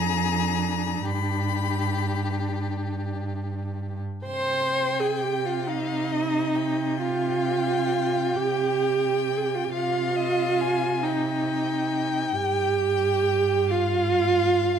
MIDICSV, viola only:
0, 0, Header, 1, 2, 480
1, 0, Start_track
1, 0, Key_signature, -3, "minor"
1, 0, Tempo, 1063830
1, 477, Time_signature, 6, 3, 24, 8
1, 1926, Tempo, 952381
1, 2406, Tempo, 900901
1, 4806, Tempo, 882353
1, 7561, End_track
2, 0, Start_track
2, 0, Title_t, "Viola"
2, 0, Program_c, 0, 41
2, 0, Note_on_c, 0, 62, 59
2, 1812, Note_off_c, 0, 62, 0
2, 1923, Note_on_c, 0, 72, 81
2, 2293, Note_on_c, 0, 68, 67
2, 2301, Note_off_c, 0, 72, 0
2, 2411, Note_on_c, 0, 67, 64
2, 2419, Note_off_c, 0, 68, 0
2, 2530, Note_on_c, 0, 65, 61
2, 2538, Note_off_c, 0, 67, 0
2, 2645, Note_on_c, 0, 63, 77
2, 2653, Note_off_c, 0, 65, 0
2, 3354, Note_off_c, 0, 63, 0
2, 3357, Note_on_c, 0, 65, 80
2, 4077, Note_on_c, 0, 67, 78
2, 4085, Note_off_c, 0, 65, 0
2, 4617, Note_on_c, 0, 68, 60
2, 4625, Note_off_c, 0, 67, 0
2, 4662, Note_on_c, 0, 67, 61
2, 4670, Note_off_c, 0, 68, 0
2, 4709, Note_on_c, 0, 65, 58
2, 4717, Note_off_c, 0, 67, 0
2, 4762, Note_on_c, 0, 67, 61
2, 4770, Note_off_c, 0, 65, 0
2, 4802, Note_off_c, 0, 67, 0
2, 4805, Note_on_c, 0, 65, 87
2, 5515, Note_on_c, 0, 63, 67
2, 5523, Note_off_c, 0, 65, 0
2, 6238, Note_off_c, 0, 63, 0
2, 6241, Note_on_c, 0, 67, 92
2, 6976, Note_on_c, 0, 65, 90
2, 6984, Note_off_c, 0, 67, 0
2, 7561, Note_off_c, 0, 65, 0
2, 7561, End_track
0, 0, End_of_file